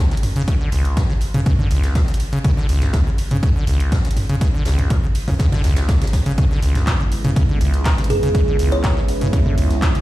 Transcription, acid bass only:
0.11 0.15 C#3 medium
0.36 0.42 C#3 loud
0.48 0.55 C#3 medium
0.61 0.70 D3 medium
0.72 0.98 C#2 medium
0.97 1.04 C#3 medium
1.10 1.14 C#3 medium
1.34 1.41 C#3 loud
1.46 1.53 C#3 medium
1.59 1.69 D3 medium
1.71 1.97 C#2 medium
1.95 2.02 C#3 medium
2.08 2.12 C#3 medium
2.33 2.39 C#3 loud
2.44 2.52 C#3 medium
2.57 2.67 D3 medium
2.69 2.95 C#2 medium
2.94 3.01 C#3 medium
3.06 3.10 C#3 medium
3.31 3.38 C#3 loud
3.43 3.50 C#3 medium
3.56 3.65 D3 medium
3.67 3.94 C#2 medium
3.92 3.99 C#3 medium
4.05 4.09 C#3 medium
4.29 4.36 C#3 medium
4.41 4.48 C#3 medium
4.54 4.64 D3 medium
4.66 4.92 C#2 medium
4.90 4.97 C#3 medium
5.03 5.07 C#3 medium
5.28 5.34 C#3 medium
5.40 5.47 C#3 medium
5.52 5.62 D3 medium
5.64 5.90 C#2 medium
5.89 5.96 C#3 medium
6.02 6.05 C#3 medium
6.26 6.33 C#3 medium
6.38 6.45 C#3 medium
6.51 6.60 D3 medium
6.62 6.89 C#2 medium
6.87 6.94 C#3 medium
7.00 7.04 C#3 medium
7.24 7.31 C#3 loud
7.36 7.43 C#3 medium
7.49 7.59 D3 medium
7.61 7.87 C#2 medium
7.85 7.93 C#3 medium
7.98 8.02 C#3 medium
8.23 8.29 C#3 medium
8.35 8.42 C#3 medium
8.48 8.57 D3 medium
8.59 8.85 C#2 medium
8.84 8.91 C#3 medium
8.97 9.01 C#3 medium
9.21 9.28 C#3 loud
9.33 9.40 C#3 medium
9.46 9.56 D3 medium
9.58 9.84 C#2 medium
9.82 9.89 C#3 medium
9.95 9.99 C#3 medium

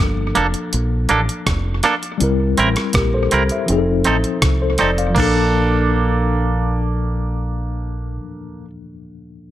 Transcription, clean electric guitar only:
0.35 0.45 A#3 medium
0.35 0.46 D4 medium
0.35 0.46 A4 medium
1.09 1.19 A#3 medium
1.09 1.20 D4 medium
1.09 1.20 A4 medium
1.84 1.94 A#3 medium
1.84 1.94 D4 loud
1.84 1.94 A4 loud
2.58 2.68 C4 medium
2.58 2.68 E4 medium
2.58 2.69 A#4 medium
3.32 3.42 C4 medium
3.32 3.42 E4 medium
3.32 3.43 A#4 medium
4.05 4.15 C4 medium
4.05 4.16 D#4 medium
4.05 4.16 A4 medium
4.79 4.89 C4 medium
4.79 4.90 D#4 medium
4.79 4.90 A4 medium
5.15 8.65 A#3 medium
5.15 8.68 D4 medium
5.20 8.70 A4 medium

